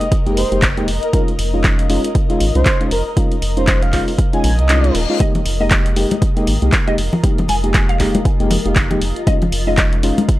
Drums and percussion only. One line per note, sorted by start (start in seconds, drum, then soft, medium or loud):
0.01 closed hi-hat medium
0.12 kick loud
0.12 closed hi-hat medium
0.27 closed hi-hat soft
0.37 open hi-hat loud
0.52 closed hi-hat soft
0.62 kick loud
0.62 clap loud
0.62 closed hi-hat medium
0.77 closed hi-hat soft
0.88 open hi-hat loud
1.03 closed hi-hat soft
1.13 kick loud
1.13 closed hi-hat medium
1.28 closed hi-hat soft
1.39 open hi-hat loud
1.64 kick loud
1.64 clap loud
1.64 closed hi-hat medium
1.79 closed hi-hat medium
1.90 open hi-hat loud
2.04 closed hi-hat medium
2.15 kick loud
2.15 closed hi-hat medium
2.30 closed hi-hat soft
2.40 open hi-hat loud
2.55 closed hi-hat soft
2.66 kick loud
2.66 clap loud
2.66 closed hi-hat medium
2.81 closed hi-hat soft
2.91 open hi-hat loud
3.17 kick loud
3.17 closed hi-hat medium
3.32 closed hi-hat soft
3.42 open hi-hat loud
3.57 closed hi-hat soft
3.67 kick loud
3.67 clap loud
3.67 closed hi-hat medium
3.82 closed hi-hat medium
3.93 kick medium
3.93 clap soft
3.93 open hi-hat loud
4.08 open hi-hat medium
4.18 kick loud
4.18 closed hi-hat medium
4.33 closed hi-hat soft
4.44 open hi-hat loud
4.59 closed hi-hat soft
4.69 clap loud
4.69 closed hi-hat medium
4.84 closed hi-hat soft
4.95 open hi-hat loud
5.20 kick loud
5.20 closed hi-hat medium
5.20 high conga medium
5.35 closed hi-hat soft
5.35 low conga medium
5.46 open hi-hat loud
5.71 kick loud
5.71 clap loud
5.71 closed hi-hat medium
5.86 closed hi-hat medium
5.96 open hi-hat loud
6.11 closed hi-hat medium
6.11 high conga loud
6.22 kick loud
6.22 closed hi-hat medium
6.37 closed hi-hat soft
6.47 open hi-hat loud
6.62 closed hi-hat soft
6.72 kick loud
6.72 clap loud
6.72 closed hi-hat medium
6.88 closed hi-hat soft
6.98 open hi-hat loud
7.13 low conga medium
7.24 kick loud
7.24 closed hi-hat medium
7.38 closed hi-hat soft
7.38 low conga medium
7.48 open hi-hat loud
7.48 high conga medium
7.64 closed hi-hat soft
7.74 kick loud
7.74 clap loud
7.74 closed hi-hat medium
7.89 closed hi-hat medium
8.00 kick medium
8.00 clap soft
8.00 open hi-hat loud
8.15 closed hi-hat medium
8.15 high conga medium
8.25 kick loud
8.25 closed hi-hat medium
8.40 closed hi-hat soft
8.50 open hi-hat loud
8.50 low conga loud
8.66 closed hi-hat soft
8.76 kick loud
8.76 clap loud
8.76 closed hi-hat medium
8.91 closed hi-hat soft
8.91 low conga medium
9.02 open hi-hat loud
9.16 closed hi-hat soft
9.27 kick loud
9.27 closed hi-hat medium
9.27 high conga medium
9.42 closed hi-hat soft
9.42 low conga medium
9.52 open hi-hat loud
9.77 kick loud
9.77 clap loud
9.77 closed hi-hat medium
9.93 closed hi-hat medium
10.03 open hi-hat loud
10.18 closed hi-hat medium
10.18 high conga loud
10.29 kick loud
10.29 closed hi-hat medium